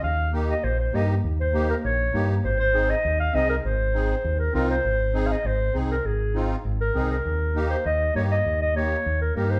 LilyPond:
<<
  \new Staff \with { instrumentName = "Clarinet" } { \time 4/4 \key aes \major \tempo 4 = 199 f''4 r8 ees''8 c''8 c''8 ees''8 r8 | r8 c''4 bes'8 des''4. r8 | c''8 c''4 ees''4 f''8 ees''8 bes'8 | c''2~ c''8 bes'8 bes'8 c''8~ |
c''4~ c''16. f''32 ees''8 c''4 r8 bes'8 | aes'4. r4 bes'4 bes'8~ | bes'4. c''8 ees''4 des''8 ees''8~ | ees''8 ees''8 des''4. bes'8 bes'8 c''8 | }
  \new Staff \with { instrumentName = "Accordion" } { \time 4/4 \key aes \major r4 <bes ees' g'>8 r4. <bes ees' g'>8 r8 | r4 <bes ees' g'>8 r4. <bes ees' g'>8 r8 | r4 <c' ees' aes'>8 r4. <c' ees' aes'>8 r8 | r4 <c' ees' aes'>8 r4. <c' ees' f'>8 r8 |
r4 <c' ees' aes'>8 r4. <c' ees' aes'>8 r8 | r4 <c' ees' f'>8 r4. <c' ees' aes'>8 r8 | r4 <bes ees' g'>8 r4. <bes ees' g'>8 r8 | r4 <bes ees' g'>8 r4. <bes ees' g'>8 r8 | }
  \new Staff \with { instrumentName = "Fingered electric bass" } { \clef bass \time 4/4 \key aes \major ees,2 bes,,4 g,4 | ees,2 bes,,4 g,4 | aes,,2 ees,4 c,4 | aes,,2 ees,4 c,4 |
aes,,2 aes,,4 c,4 | aes,,2 aes,,4 c,4 | ees,2 ees,4 g,4 | ees,2 ees,4 g,4 | }
>>